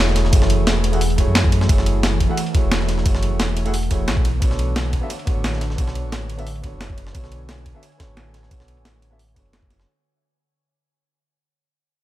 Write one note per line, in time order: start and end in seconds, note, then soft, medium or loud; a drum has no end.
0.00 0.32 E1 loud
0.00 4.21 E3 medium
0.00 0.29 A3 medium
0.00 4.21 A3 medium
0.00 0.30 E4 medium
0.00 0.31 F#4 medium
0.00 0.32 G#4 medium
0.00 1.67 G#4 loud
0.00 0.32 C#5 medium
0.08 snare soft
0.16 snare soft
0.16 closed hi-hat medium
0.16 ride medium
0.25 snare soft
0.31 0.61 F#1 loud
0.31 0.90 A3 medium
0.31 0.90 E4 medium
0.31 0.91 F#4 medium
0.31 0.91 G#4 medium
0.31 kick loud
0.31 closed hi-hat medium
0.31 ride medium
0.35 0.92 C#5 medium
0.42 snare medium
0.50 closed hi-hat medium
0.50 ride medium
0.59 1.27 E1 medium
0.67 snare loud
0.67 closed hi-hat medium
0.67 ride medium
0.84 closed hi-hat medium
0.84 ride medium
0.92 0.99 A3 medium
0.92 0.99 E4 medium
0.92 0.99 F#4 medium
0.92 1.00 G#4 medium
0.92 1.00 F#5 medium
0.92 ride soft
1.01 closed hi-hat medium
1.01 open hi-hat medium
1.10 closed hi-hat soft
1.16 1.66 A3 medium
1.16 1.67 E4 medium
1.16 1.67 F#4 medium
1.16 1.68 G#4 medium
1.16 kick medium
1.16 closed hi-hat medium
1.16 ride medium
1.20 1.68 C#5 medium
1.27 1.68 F#2 medium
1.35 snare loud
1.35 closed hi-hat medium
1.35 ride medium
1.44 kick loud
1.52 closed hi-hat medium
1.52 ride medium
1.61 snare medium
1.67 2.28 F#1 loud
1.67 2.26 A3 medium
1.67 2.27 E4 medium
1.67 2.27 F#4 medium
1.67 2.28 G#4 medium
1.67 kick loud
1.67 closed hi-hat medium
1.67 ride medium
1.71 2.28 C#5 medium
1.78 snare soft
1.86 closed hi-hat medium
1.86 ride medium
2.03 snare loud
2.03 closed hi-hat medium
2.03 ride medium
2.20 kick medium
2.20 closed hi-hat medium
2.20 ride medium
2.29 2.35 A3 medium
2.29 2.36 E4 medium
2.29 2.36 F#4 medium
2.29 2.36 G#4 medium
2.29 2.36 F#5 medium
2.37 closed hi-hat medium
2.37 ride medium
2.46 closed hi-hat soft
2.53 3.02 A3 medium
2.53 3.03 E4 medium
2.53 3.04 F#4 medium
2.53 3.04 G#4 medium
2.53 3.05 C#5 medium
2.53 kick loud
2.53 closed hi-hat medium
2.53 ride medium
2.64 3.04 E1 loud
2.72 snare loud
2.72 closed hi-hat medium
2.72 ride medium
2.81 snare soft
2.89 snare soft
2.89 closed hi-hat medium
2.89 ride medium
2.98 snare soft
3.04 3.33 F#1 loud
3.04 3.63 A3 medium
3.04 3.63 E4 medium
3.04 3.64 F#4 medium
3.04 3.64 G#4 medium
3.04 kick loud
3.04 closed hi-hat medium
3.04 ride medium
3.08 3.65 C#5 medium
3.15 snare medium
3.23 closed hi-hat medium
3.23 ride medium
3.32 3.90 E1 medium
3.40 snare loud
3.40 closed hi-hat medium
3.40 ride medium
3.57 closed hi-hat medium
3.57 ride medium
3.65 3.72 A3 medium
3.65 3.72 E4 medium
3.65 3.72 F#4 medium
3.65 3.72 G#4 medium
3.65 3.73 F#5 medium
3.65 ride soft
3.74 closed hi-hat medium
3.74 open hi-hat medium
3.83 closed hi-hat soft
3.90 4.09 E1 medium
3.90 4.23 A3 medium
3.90 4.24 E4 medium
3.90 4.24 F#4 medium
3.90 4.24 G#4 medium
3.90 4.24 C#5 medium
3.90 kick medium
3.90 closed hi-hat medium
3.90 ride medium
4.08 4.41 B1 medium
4.08 snare loud
4.08 closed hi-hat medium
4.08 ride medium
4.17 kick loud
4.25 9.83 D3 medium
4.25 9.84 C#5 medium
4.25 closed hi-hat medium
4.25 ride medium
4.40 5.01 B1 loud
4.40 4.99 B3 medium
4.40 4.99 D4 medium
4.40 5.00 F#4 medium
4.40 5.00 A4 medium
4.40 kick loud
4.40 closed hi-hat medium
4.40 ride medium
4.44 5.01 C#5 medium
4.51 snare soft
4.59 closed hi-hat medium
4.59 ride medium
4.76 snare loud
4.76 closed hi-hat medium
4.76 ride medium
4.93 kick medium
4.93 closed hi-hat medium
4.93 ride medium
5.01 5.08 B3 medium
5.01 5.08 D4 medium
5.01 5.08 F#4 medium
5.01 5.09 A4 medium
5.01 5.09 E5 medium
5.10 closed hi-hat medium
5.10 ride medium
5.19 closed hi-hat soft
5.25 5.75 B3 medium
5.25 5.76 D4 medium
5.25 5.76 F#4 medium
5.25 5.77 A4 medium
5.25 kick loud
5.25 closed hi-hat medium
5.25 ride medium
5.29 5.77 C#5 medium
5.36 5.77 A1 loud
5.44 snare loud
5.44 closed hi-hat medium
5.44 ride medium
5.53 snare soft
5.61 snare soft
5.61 closed hi-hat medium
5.61 ride medium
5.70 snare soft
5.76 6.06 B1 loud
5.76 6.35 B3 medium
5.76 6.36 D4 medium
5.76 6.36 F#4 medium
5.76 6.37 A4 medium
5.76 kick loud
5.76 closed hi-hat medium
5.76 ride medium
5.80 6.37 C#5 medium
5.87 snare medium
5.95 closed hi-hat medium
5.95 ride medium
6.04 6.72 A1 medium
6.12 snare loud
6.12 closed hi-hat medium
6.12 ride medium
6.30 closed hi-hat medium
6.30 ride medium
6.38 6.44 B3 medium
6.38 6.45 D4 medium
6.38 6.45 F#4 medium
6.38 6.45 A4 medium
6.38 6.45 E5 medium
6.38 ride soft
6.47 closed hi-hat medium
6.47 open hi-hat medium
6.56 closed hi-hat soft
6.62 7.11 B3 medium
6.62 7.12 D4 medium
6.62 7.13 F#4 medium
6.62 7.13 A4 medium
6.62 kick medium
6.62 closed hi-hat medium
6.62 ride medium
6.66 7.14 C#5 medium
6.73 7.13 F#1 medium
6.81 snare loud
6.81 closed hi-hat medium
6.81 ride medium
6.90 kick medium
6.98 9.85 G#5 medium
6.98 closed hi-hat medium
6.98 ride medium
7.07 snare medium
7.13 7.73 B1 loud
7.13 7.72 B3 medium
7.13 7.72 D4 medium
7.13 7.73 F#4 medium
7.13 7.73 A4 medium
7.13 kick loud
7.13 closed hi-hat medium
7.13 ride medium
7.17 7.74 C#5 medium
7.24 snare soft
7.32 closed hi-hat medium
7.32 ride medium
7.49 snare loud
7.49 closed hi-hat medium
7.49 ride medium
7.66 kick medium
7.66 closed hi-hat medium
7.66 ride medium
7.74 7.81 B3 medium
7.74 7.81 D4 medium
7.74 7.81 F#4 medium
7.74 7.81 A4 medium
7.74 7.82 E5 medium
7.83 closed hi-hat medium
7.83 ride medium
7.92 closed hi-hat soft
7.98 8.48 B3 medium
7.98 8.49 D4 medium
7.98 8.49 F#4 medium
7.98 8.50 A4 medium
7.98 kick medium
7.98 snare loud
7.98 closed hi-hat medium
7.98 ride medium
8.02 8.50 C#5 medium
8.09 8.50 A1 loud
8.17 snare loud
8.17 closed hi-hat medium
8.17 ride medium
8.34 snare soft
8.34 closed hi-hat medium
8.34 ride medium
8.43 snare soft
8.49 8.79 B1 loud
8.49 9.08 B3 medium
8.49 9.09 D4 medium
8.49 9.09 F#4 medium
8.49 9.10 A4 medium
8.49 kick loud
8.49 closed hi-hat medium
8.49 ride medium
8.53 9.10 C#5 medium
8.60 snare medium
8.68 closed hi-hat medium
8.68 ride medium
8.77 9.36 A1 medium
8.77 closed hi-hat soft
8.85 snare loud
8.85 closed hi-hat medium
8.85 ride medium
9.02 closed hi-hat medium
9.02 ride medium
9.10 9.17 B3 medium
9.10 9.17 D4 medium
9.10 9.18 F#4 medium
9.10 9.18 A4 medium
9.10 9.18 E5 medium
9.19 closed hi-hat medium
9.19 open hi-hat medium
9.28 closed hi-hat soft
9.34 9.86 F#1 medium
9.34 9.84 B3 medium
9.34 9.85 D4 medium
9.34 9.85 F#4 medium
9.34 9.86 A4 medium
9.34 kick medium
9.34 closed hi-hat medium
9.34 ride medium
9.38 9.87 C#5 medium
9.45 closed hi-hat soft
9.53 snare loud
9.53 closed hi-hat medium
9.53 ride medium
9.63 kick loud
9.70 snare soft
9.70 closed hi-hat medium
9.70 ride medium
9.79 snare medium